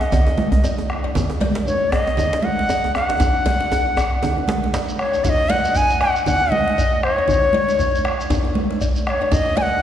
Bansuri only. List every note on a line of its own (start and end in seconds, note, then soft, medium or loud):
0.00 0.90 D#5 medium
1.67 1.93 C#5 medium
1.91 2.45 D#5 medium
2.44 2.95 F#5 loud
2.95 4.70 F#5 loud
4.99 5.26 C#5 medium
5.24 5.30 F#5 loud
5.29 5.51 D#5 loud
5.50 5.78 F#5 loud
5.76 6.01 G#5 loud
6.02 6.25 F#5 medium
6.26 6.53 F#5 loud
6.51 7.05 D#5 loud
7.04 8.56 C#5 loud
9.06 9.34 C#5 loud
9.06 9.11 D#5 medium
9.32 9.59 D#5 loud
9.57 9.63 G#5 loud
9.62 9.82 F#5 loud